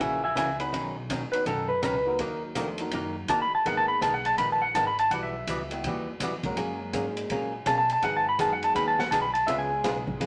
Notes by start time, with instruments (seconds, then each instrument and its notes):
0.00 upright bass A#1, hollow-body jazz guitar C#3 E3 A#3 C#4 F#4, electric slide guitar E5 G#5, kick, ride
0.24 electric slide guitar E5 G#5
0.35 upright bass C#2, hollow-body jazz guitar C#3 E3 A#3 C#4 F#4, electric slide guitar E5 G#5, kick, hi-hat pedal, ride
0.59 upright piano B3 C#4 D#4 F#4 B4, electric slide guitar B5, ride
0.72 upright bass B1, hollow-body jazz guitar B2 D#3 F#3 C#4 D#4, kick, ride
1.10 upright bass D#2, hollow-body jazz guitar B2 D#3 F#3 C#4 D#4, kick, hi-hat pedal, ride
1.32 upright piano B3 C#4 D#4 F#4 B4, electric slide guitar B4, ride
1.46 upright bass F#2, hollow-body jazz guitar B2 D#3 F#3 C#4 D#4, electric slide guitar A4, kick, ride
1.68 electric slide guitar B4
1.82 upright bass C#2, hollow-body jazz guitar B2 D#3 F#3 C#4 D#4, electric slide guitar B4, kick, hi-hat pedal, ride
2.06 upright piano F#3 A#3 D#4 F#4 A#4
2.19 upright bass D#2, hollow-body jazz guitar D#3 A#3 D#4 F#4 A#4, kick, ride
2.55 upright bass E2, hollow-body jazz guitar D#3 A#3 D#4 F#4 A#4, upright piano F3 A3 D4 F4 A4, kick, hi-hat pedal, ride
2.78 upright piano F#3 A#3 D#4 F#4 A#4, ride
2.91 upright bass F#2, hollow-body jazz guitar D#3 A#3 D#4 F#4 A#4, kick, ride
3.28 upright bass D#2, hollow-body jazz guitar D#3 A#3 D#4 F#4 A#4, electric slide guitar A5, kick, hi-hat pedal, ride
3.42 electric slide guitar B5
3.52 electric slide guitar A5, muted upright bass stroke
3.65 upright bass G#1, hollow-body jazz guitar D#3 G#3 B3 D#4 A#4, upright piano A#3 B3 D#4 G#4 A#4, electric slide guitar F#5, kick, ride
3.77 electric slide guitar A5
3.88 electric slide guitar B5
4.01 upright bass B1, hollow-body jazz guitar D#3 G#3 B3 D#4 A#4, electric slide guitar A5, kick, hi-hat pedal, ride
4.14 electric slide guitar F#5
4.25 electric slide guitar A5, ride
4.38 upright bass A#1, hollow-body jazz guitar D#3 G#3 B3 D#4 A#4, electric slide guitar B5, kick, ride
4.52 electric slide guitar A5
4.62 electric slide guitar F#5
4.75 upright bass G#1, hollow-body jazz guitar D#3 G#3 B3 D#4 A#4, electric slide guitar A5, kick, hi-hat pedal, ride
4.87 electric slide guitar B5
4.99 electric slide guitar A5, ride
5.11 upright bass B1, hollow-body jazz guitar E3 G3 B3 F#4, electric slide guitar F#5, kick, ride
5.23 electric slide guitar E5
5.47 upright bass C#2, hollow-body jazz guitar E3 G3 B3 F#4, kick, hi-hat pedal, ride
5.71 upright piano G3 B3 E4 F#4 G4, ride
5.84 upright bass D#2, hollow-body jazz guitar E3 G3 B3 F#4, kick, ride
6.20 upright bass E2, hollow-body jazz guitar E3 G3 B3 F#4, kick, hi-hat pedal, ride
6.43 upright piano G#3 A#3 C#4 F#4 A#4, kick, ride
6.56 upright bass F#2, hollow-body jazz guitar F#3 A#3 C#4 G#4, kick, ride
6.93 upright bass G#2, hollow-body jazz guitar F#3 A#3 C#4 G#4, upright piano G#3 A#3 C#4 F#4 G#4, kick, hi-hat pedal, ride
7.17 ride
7.30 upright bass A#2, hollow-body jazz guitar F#3 A#3 C#4 G#4, kick, ride
7.66 upright bass B2, hollow-body jazz guitar F#3 A#3 C#4 G#4, electric slide guitar A5, kick, hi-hat pedal, ride
7.78 electric slide guitar A5
7.89 electric slide guitar A5, ride
8.02 upright bass G#2, hollow-body jazz guitar D#3 F#3 B3 D#4 G#4, electric slide guitar F#5, kick, ride
8.17 electric slide guitar A5
8.29 electric slide guitar B5
8.39 upright bass F#2, hollow-body jazz guitar D#3 F#3 B3 D#4 G#4, upright piano G#3 B3 D#4 F#4 G#4, electric slide guitar A5, kick, hi-hat pedal, ride
8.53 electric slide guitar F#5
8.63 electric slide guitar A5, ride
8.75 upright bass D#2, hollow-body jazz guitar D#3 F#3 B3 D#4 G#4, electric slide guitar B5, kick, ride
8.88 electric slide guitar A5
8.99 electric slide guitar F#5, snare
9.11 upright bass B1, hollow-body jazz guitar D#3 F#3 B3 D#4 G#4, electric slide guitar A5, kick, hi-hat pedal, ride
9.22 electric slide guitar B5
9.34 electric slide guitar A5, ride
9.47 upright bass C#2, hollow-body jazz guitar C#3 G#3 B3 F4 G#4, upright piano G#3 B3 C#4 F4 G#4, electric slide guitar E5, kick, ride
9.58 electric slide guitar G#5
9.84 upright bass B1, hollow-body jazz guitar C#3 G#3 B3 F4 G#4, kick, snare, hi-hat pedal, ride
10.07 kick
10.20 upright bass A#1, hollow-body jazz guitar C#3 G#3 B3 F4 G#4, kick, ride